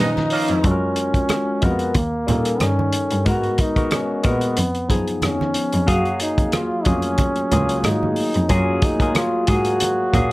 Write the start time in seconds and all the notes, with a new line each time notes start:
Already playing: D#3 F3 C#4 D#4 F4 B4 D#5 A#5
0.00 A#2 D#4
0.16 snare, high conga
0.30 F3 A#3 C#4 F4, open hi-hat
0.48 F2, closed hi-hat
0.63 F#2 G#3 F4 F#4 A4, kick, closed hi-hat, muted conga
0.67 C#4
0.71 A#4
0.96 closed hi-hat
1.14 F2, kick, closed hi-hat
1.29 cross-stick, closed hi-hat, high conga
1.61 F2 G#3 B3 F4 F#4 A#4, kick, closed hi-hat
1.79 closed hi-hat
1.95 D#2 A#3, kick, closed hi-hat, muted conga
2.26 A#2 G3 C#4 D#4 A4, closed hi-hat, muted conga, low conga
2.35 A#4
2.45 cross-stick, closed hi-hat
2.60 G2 C#4, cross-stick, closed hi-hat, high conga
2.79 high conga
2.93 closed hi-hat
3.11 G2, closed hi-hat
3.25 G#2 G#3 B3 F#4 A#4, kick, closed hi-hat
3.43 closed hi-hat
3.58 D#4, kick, closed hi-hat
3.76 A#2 G#3 B3 F#4 A#4, kick, closed hi-hat
3.91 C#4, cross-stick, closed hi-hat, high conga
4.23 A#2 G#3 B3 F#4 A#4 B4, kick, closed hi-hat
4.41 closed hi-hat
4.57 F2, closed hi-hat, muted conga
4.75 closed hi-hat
4.88 F#2 F3 B3 D#4 G#4, kick, closed hi-hat, muted conga
5.08 closed hi-hat
5.22 F2 C#4, cross-stick, closed hi-hat, high conga
5.41 cross-stick, high conga
5.54 closed hi-hat
5.73 F2, closed hi-hat
5.86 F#2 F#3 A#3 F#4 G#4 F5, kick, closed hi-hat
6.05 closed hi-hat
6.20 D#4, closed hi-hat
6.38 F2, kick, closed hi-hat
6.52 F4, cross-stick, closed hi-hat, high conga
6.84 F2 A3 C#4 F4 F#4 G#4, kick, closed hi-hat
6.92 A#3
7.02 closed hi-hat
7.18 kick, closed hi-hat, muted conga
7.36 closed hi-hat
7.51 C#2 F#3 A#3 F4 G#4, closed hi-hat, muted conga, low conga
7.69 closed hi-hat
7.83 G#2 D#4, cross-stick, closed hi-hat, high conga
8.03 high conga
8.16 open hi-hat
8.34 F2, closed hi-hat
8.49 F#2 F#3 A#3 C#4 F4 G#4, kick, closed hi-hat, muted conga
8.82 D#4, kick, closed hi-hat
9.00 G#2 F#3 A#3 F4 G#4, kick, closed hi-hat
9.15 F4, cross-stick, closed hi-hat, high conga
9.47 G#2 F#3 A#3 F#4 G#4 F5, kick, closed hi-hat
9.65 closed hi-hat
9.80 closed hi-hat, muted conga
10.13 A#2 F#3 A#3 G#4 F5, kick, closed hi-hat, muted conga, low conga